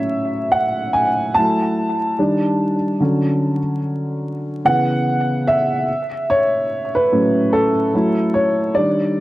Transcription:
0.00 1.32 A2 soft
0.00 1.33 F#3 medium
0.00 1.33 C#4 medium
0.00 1.37 C#5 medium
0.00 0.49 E5 medium
0.52 0.91 F#5 loud
0.93 1.02 G#5 medium
1.34 1.93 F#3 medium
1.34 1.94 A3 medium
1.34 1.94 E4 medium
1.34 3.77 A5 loud
2.19 2.75 D#3 medium
2.19 2.76 G3 medium
2.19 2.76 D4 medium
3.00 3.57 D3 medium
3.00 3.58 F#3 medium
3.00 3.58 C#4 medium
4.65 5.84 C#3 medium
4.65 5.84 E3 medium
4.65 5.85 B3 medium
4.65 5.43 F#5 loud
5.47 6.32 E5 loud
6.30 6.90 C#5 loud
6.95 7.54 B4 loud
7.12 7.69 A2 medium
7.12 7.69 F#3 medium
7.12 7.69 C#4 medium
7.53 8.31 A4 loud
7.94 8.72 F#3 medium
7.94 8.72 A3 medium
7.94 8.72 E4 medium
8.34 8.72 C#5 medium
8.75 9.20 D#3 medium
8.75 9.20 G3 medium
8.75 9.20 D4 medium
8.75 9.20 D5 medium

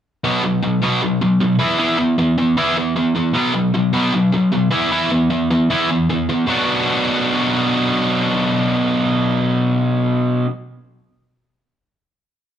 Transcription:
0.24 0.41 B2 medium
0.24 0.42 F#3 medium
0.24 0.43 B3 medium
0.42 0.60 B2 medium
0.42 0.61 F#3 medium
0.62 0.80 B2 medium
0.62 0.80 F#3 medium
0.82 1.00 B2 medium
0.82 1.01 F#3 medium
0.82 1.01 B3 loud
1.02 1.19 B2 medium
1.02 1.19 F#3 medium
1.21 1.38 B2 medium
1.21 1.39 F#3 medium
1.40 1.58 B2 medium
1.40 1.58 F#3 medium
1.59 1.77 E3 medium
1.59 1.78 B3 medium
1.59 1.78 E4 medium
1.79 1.97 E3 medium
1.79 1.97 B3 medium
1.79 1.98 E4 medium
1.98 2.16 E3 medium
1.98 2.16 B3 medium
2.18 2.35 E3 medium
2.18 2.36 B3 medium
2.38 2.55 E3 medium
2.38 2.55 B3 medium
2.57 2.75 E3 medium
2.57 2.75 B3 medium
2.57 2.76 E4 loud
2.77 2.94 E3 medium
2.77 2.94 B3 medium
2.96 3.13 E3 medium
2.96 3.14 B3 medium
3.15 3.33 E3 medium
3.15 3.33 B3 medium
3.34 3.53 B2 medium
3.34 3.53 F#3 medium
3.34 3.53 B3 loud
3.54 3.72 B2 medium
3.54 3.72 F#3 medium
3.74 3.91 B2 medium
3.74 3.92 F#3 medium
3.93 4.12 B2 medium
3.93 4.12 F#3 medium
3.93 4.12 B3 loud
4.13 4.31 B2 medium
4.13 4.31 F#3 medium
4.32 4.50 B2 medium
4.32 4.50 F#3 medium
4.52 4.70 B2 medium
4.52 4.70 F#3 medium
4.71 4.90 E3 medium
4.71 4.90 B3 medium
4.71 4.90 E4 medium
4.91 5.09 E3 medium
4.91 5.10 B3 medium
4.91 5.10 E4 loud
5.10 5.28 E3 medium
5.10 5.29 B3 medium
5.30 5.48 E3 medium
5.30 5.48 B3 medium
5.50 5.68 E3 medium
5.50 5.68 B3 medium
5.70 5.88 E3 medium
5.70 5.89 B3 medium
5.70 5.89 E4 medium
5.90 6.07 E3 medium
5.90 6.07 B3 medium
6.09 6.27 E3 medium
6.09 6.27 B3 medium
6.29 6.46 E3 medium
6.29 6.47 B3 medium
6.47 10.46 B2 medium
6.47 10.47 F#3 loud
6.47 10.49 B3 medium
6.47 10.49 D4 loud
6.51 10.50 F#4 loud

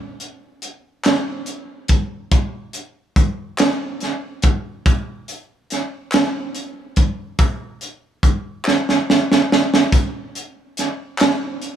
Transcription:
0.20 closed hi-hat soft
0.62 closed hi-hat soft
1.04 snare loud
1.04 clap medium
1.04 closed hi-hat medium
1.46 closed hi-hat soft
1.88 kick medium
1.88 closed hi-hat medium
2.31 kick loud
2.31 closed hi-hat medium
2.73 closed hi-hat soft
3.16 kick medium
3.16 closed hi-hat medium
3.58 snare loud
3.58 clap medium
3.58 closed hi-hat medium
4.00 snare soft
4.00 closed hi-hat soft
4.42 kick medium
4.42 closed hi-hat medium
4.86 kick loud
4.86 closed hi-hat medium
5.28 closed hi-hat soft
5.70 snare soft
5.70 closed hi-hat medium
6.12 snare loud
6.12 clap medium
6.12 closed hi-hat medium
6.55 closed hi-hat medium
6.96 kick medium
6.96 closed hi-hat medium
7.39 kick loud
7.39 closed hi-hat medium
7.81 closed hi-hat soft
8.23 kick medium
8.23 closed hi-hat medium
8.65 snare medium
8.65 clap medium
8.89 snare soft
9.10 snare medium
9.32 snare medium
9.52 snare medium
9.74 snare medium
9.92 kick loud
9.92 closed hi-hat medium
10.35 closed hi-hat medium
10.77 snare soft
10.77 closed hi-hat medium
11.18 snare loud
11.18 clap medium
11.18 closed hi-hat medium
11.62 closed hi-hat soft

